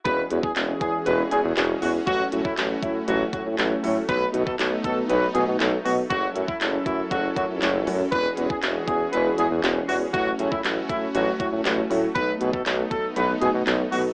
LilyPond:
<<
  \new Staff \with { instrumentName = "Horn section" } { \time 4/4 \key e \major \tempo 4 = 119 b'8 r16 gis'16 r8 gis'8 b'8 gis'16 r8. fis'16 r16 | fis'8 r16 e'16 r8 e'8 fis'8 fis'16 r4 r16 | b'8 r16 a'16 r8 a'8 b'8 gis'16 r8. fis'16 r16 | fis'8 r16 e'16 r8 e'8 fis'8 fis'16 r4 r16 |
b'8 r16 gis'16 r8 gis'8 b'8 gis'16 r8. fis'16 r16 | fis'8 r16 e'16 r8 e'8 fis'8 fis'16 r4 r16 | b'8 r16 a'16 r8 a'8 b'8 gis'16 r8. fis'16 r16 | }
  \new Staff \with { instrumentName = "Grand piano" } { \time 4/4 \key e \major <gis b cis' e' fis'>16 r16 <gis b cis' e' fis'>16 r16 <gis b cis' e' fis'>16 r16 <gis b cis' e' gis'>16 r16 <gis b cis' e' fis'>16 r16 <gis b cis' e' gis'>16 r16 <gis b cis' e' fis'>16 r16 <gis b cis' e' fis'>16 r16 | <fis a cis' e' fis'>16 r16 <fis a cis' e' fis'>16 r16 <fis a cis' e' fis'>16 r16 <fis a cis' e' fis'>16 r16 <fis a cis' e' fis'>16 r16 <fis a cis' e' fis'>16 r16 <fis a cis' e' fis'>16 r16 <fis a cis' e' a'>16 r16 | <fis a b dis' fis'>16 r16 <fis a b dis' a'>16 r16 <fis a b dis' fis'>16 r16 <fis a b dis' fis'>16 r16 <fis a b dis' fis'>16 r16 <fis a b dis' fis'>16 r16 <fis a b dis' a'>16 r16 <fis a b dis' fis'>16 r16 | <fis a cis' e' fis'>16 r16 <fis a cis' e' fis'>16 r16 <fis a cis' e' a'>16 r16 <fis a cis' e' fis'>16 r16 <fis a cis' e' a'>16 r16 <fis a cis' e' fis'>16 r16 <fis a cis' e' fis'>16 r16 <fis a cis' e' fis'>16 r16 |
<gis b cis' e' fis'>16 r16 <gis b cis' e' fis'>16 r16 <gis b cis' e' fis'>16 r16 <gis b cis' e' fis'>16 r16 <gis b cis' e' gis'>16 r16 <gis b cis' e' gis'>16 r16 <gis b cis' e' fis'>16 r16 <gis b cis' e' fis'>16 r16 | <fis a cis' e' fis'>16 r16 <fis a cis' e' gis'>16 r16 <fis a cis' e' fis'>16 r16 <fis a cis' e' fis'>16 r16 <fis a cis' e' fis'>16 r16 <fis a cis' e' fis'>16 r16 <fis a cis' e' fis'>16 r16 <fis a cis' e' fis'>16 r16 | <fis a b dis' fis'>16 r16 <fis a b dis' gis'>16 r16 <fis a b dis' fis'>16 r16 <fis a b dis' fis'>16 r16 <fis a b dis' fis'>16 r16 <fis a b dis' fis'>16 r16 <fis a b dis' fis'>16 r16 <fis a b dis' fis'>16 r16 | }
  \new Staff \with { instrumentName = "Supersaw synth" } { \time 4/4 \key e \major << { <e gis'>1 | r1 | b1 | <fis e' a'>1 |
<e gis'>1 | r1 | r1 | } \\ { cis'1 | a1~ | a1 | r1 |
cis'1 | a1~ | a1 | } >> }
  \new Staff \with { instrumentName = "Tuba" } { \clef bass \time 4/4 \key e \major e,,8 e,16 e,16 e,,8 e,8 e,,8 e,16 e,16 e,,8 e,8 | a,,8 a,16 a,16 a,,8 a,8 a,,8 a,16 a,16 a,,8 a,8 | b,,8 b,16 b,16 b,,8 b,8 b,,8 b,16 b,16 b,,8 b,8 | fis,,8 fis,16 r16 fis,,8 fis,8 fis,,8 fis,16 fis,16 fis,,8 fis,8 |
e,,8 e,16 e,16 e,,8 e,8 e,,8 e,16 e,16 e,,8 e,8 | a,,8 a,16 a,16 a,,8 a,8 a,,8 a,16 a,16 a,,8 a,8 | b,,8 b,16 b,16 b,,8 r8 b,,8 b,16 b,16 b,,8 b,8 | }
  \new DrumStaff \with { instrumentName = "Drums" } \drummode { \time 4/4 <hh bd>8 hh16 bd16 <hc hh>8 <hh bd>8 hh8 hh8 <hc hh>8 hho8 | <hh bd>8 hh16 bd16 <hc hh>8 <hh bd>8 hh8 <hh bd>8 <hc hh>8 hho8 | <hh bd>8 hh16 bd16 <hc hh>8 <hh bd>8 hh8 hh8 <hc hh>8 hho8 | <hh bd>8 hh16 bd16 <hc hh>8 <hh bd>8 <hh bd>8 <hh bd>8 <hc hh>8 hho8 |
<hh bd>8 hh16 bd16 <hc hh>8 <hh bd>8 hh8 hh8 <hc hh>8 hho8 | <hh bd>8 hh16 bd16 <hc hh>8 <hh bd>8 hh8 <hh bd>8 <hc hh>8 hho8 | <hh bd>8 hh16 bd16 <hc hh>8 <hh bd>8 hh8 hh8 <hc hh>8 hho8 | }
>>